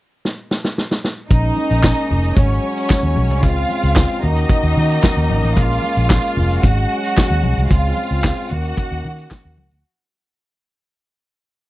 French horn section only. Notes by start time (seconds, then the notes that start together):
1.30 G#3 A#3 C#4
2.37 F#3 C#4
3.43 C#3 C4 F4
4.22 D#3 A#3 C#4 F#4
5.56 G#3
6.64 F#3
7.71 C#3 C4 F4
8.51 D#3 A#3 C#4 F#4